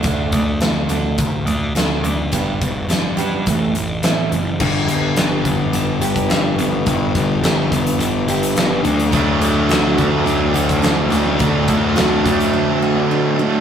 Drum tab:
CC |----------------|----------------|x---------------|----------------|
HH |x-x-x-x-x-x-x-x-|x-x-x-x-x-x-x-x-|--x-x-x-x-xxx-x-|x-x-x-xxx-xxx-xx|
SD |----o-------o---|----o-------o---|----o-------o---|----o-------o---|
BD |o-o-----o-------|o-o-----o-------|o-----o----o----|o-o---o---------|

CC |----------------|----------------|
HH |x-x-x-x-x-xxx-x-|x-x-x-xx--------|
SD |----o-------o---|----o-----------|
BD |o-----o----o----|o-o---o---------|